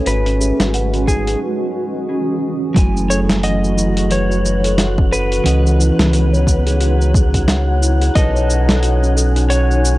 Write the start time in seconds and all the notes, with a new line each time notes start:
Already playing: C#4
0.06 G#1 F#4 B4, closed hi-hat, shaker
0.26 C#4, closed hi-hat, shaker
0.40 G#4, shaker
0.60 G#1 F#4, snare, closed hi-hat, shaker
0.74 F#5, closed hi-hat, shaker
0.94 F#4, closed hi-hat, shaker
1.07 D#4 G#4, kick, shaker
1.27 G#4, closed hi-hat, shaker
2.74 F#1 E3 F#3 A3 E4 F#4 F#5, kick, closed hi-hat, shaker
2.79 G#5
2.96 C#4, shaker
3.10 A4 C#5, shaker
3.29 F#4, snare, closed hi-hat, shaker
3.43 D#5 F#5, closed hi-hat, shaker
3.63 F#4, shaker
3.77 E4, shaker
3.97 G#4, closed hi-hat, shaker
4.11 B4 C#5, closed hi-hat, shaker
4.31 C#5, shaker
4.45 C#5, shaker
4.64 A4, closed hi-hat, shaker
4.78 F#4, snare, closed hi-hat, shaker
4.98 C#4, kick
5.12 A4 B4, shaker
5.32 F#4, closed hi-hat, shaker
5.44 C#2 E3 B3 C#4 D#4 C#5 D#5 F#5, closed hi-hat, shaker
5.48 B4
5.66 F#4, shaker
5.79 E4, shaker
5.99 C#2 G#4, snare, closed hi-hat, shaker
6.13 B4, closed hi-hat, shaker
6.33 C#5, shaker
6.47 C#5, kick, shaker
6.67 G#4, closed hi-hat, shaker
6.80 F#4, closed hi-hat, shaker
7.01 C#4, shaker
7.14 kick, shaker
7.34 F#4, kick, closed hi-hat, shaker
7.48 F#5, snare, closed hi-hat, shaker
7.68 F#4
7.82 E4, shaker
8.01 G#4, closed hi-hat, shaker
8.15 B1 C#4 D#4 A4 B4 D#5 G#5, kick, closed hi-hat, shaker
8.35 C#5, shaker
8.50 shaker
8.69 A4, snare, closed hi-hat, shaker
8.83 F#4, closed hi-hat, shaker
9.03 C#4, shaker
9.17 A4, shaker
9.36 F#4, closed hi-hat, shaker
9.50 C#5 F#5, closed hi-hat, shaker
9.70 F#4, shaker
9.84 D#4, shaker